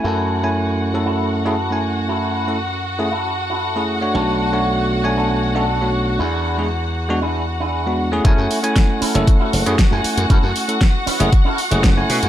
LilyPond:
<<
  \new Staff \with { instrumentName = "String section" } { \time 4/4 \key fis \minor \tempo 4 = 117 <fis' fis''>1~ | <fis' fis''>1~ | <fis' fis''>1~ | <fis' fis''>1 |
<fis' fis''>1~ | <fis' fis''>1 | }
  \new Staff \with { instrumentName = "Clean electric guitar" } { \time 4/4 \key fis \minor <e' fis' a'>4 r4 <e' fis' a'>8 r16 <e' fis' a'>8. r8 | <e' fis' a'>4 r4 <e' fis' a'>8 r16 <e' fis' a'>8. r8 | <b d' a'>4 r4 <b d' a'>8 r16 <b d' a'>8. r8 | <d' e' gis'>4 r4 <d' e' gis'>8 r16 <d' e' gis'>8. r8 |
<cis' e' fis' a'>16 r4 r16 <cis' e' fis' a'>8 r16 <cis' e' fis' a'>16 r4. | <cis' e' fis' a'>16 r4 r16 <cis' e' fis' b'>8 r16 <cis' e' fis' a'>16 r4. | }
  \new Staff \with { instrumentName = "Tine electric piano" } { \time 4/4 \key fis \minor <a cis' e' gis''>8. <a cis' e' gis''>4 <a cis' e' a'>4 <a cis' e' gis'>16 r16 <a cis' e' gis''>8.~ | <a cis' e' gis''>8. <a cis' e' a'>16 r8. <a cis' e' gis'>16 r4 r16 <a cis' e' gis'>8 <a d' fis' cis''>16~ | <a d' fis' cis''>8. <a d' fis' cis''>4 <a d' cis'' gis''>4 <a cis' d' fis'>16 r16 <a d' fis' cis''>8. | r8. <gis b d' gis'>16 r8. <gis b d' fis'>16 r4 r16 <gis b d' fis'>8 <a cis' e' gis'>16 |
<a cis' e' gis''>8. <a cis' e' gis''>4 <a cis' e' a'>4 <a cis' e' gis'>16 r16 <a cis' e' gis''>8.~ | <a cis' e' gis''>8. <a cis' e' a'>16 r8. <a cis' e' gis'>16 r8. <a cis' e' gis'>8 <a cis' e' gis''>8. | }
  \new Staff \with { instrumentName = "Slap bass" } { \clef bass \time 4/4 \key fis \minor fis,1~ | fis,1 | b,,1 | e,1 |
fis,16 fis,16 r4 r16 fis,,16 r8 fis,,16 fis,16 r16 fis,16 r16 fis,16 | fis,16 fis,16 r4 r16 fis,,16 r8. fis,,8 r16 b,16 fis,16 | }
  \new DrumStaff \with { instrumentName = "Drums" } \drummode { \time 4/4 r4 r4 r4 r4 | r4 r4 r4 r4 | r4 r4 r4 r4 | r4 r4 r4 r4 |
<hh bd>8 hho16 hh16 <hh bd sn>8 hho16 hh16 <hh bd>8 hho16 hh16 <hh bd sn>8 hho16 hh16 | <hh bd>8 hho16 hh16 <hh bd sn>8 hho16 hh16 <hh bd>8 hho16 hh16 <hh bd sn>8 hho16 hh16 | }
>>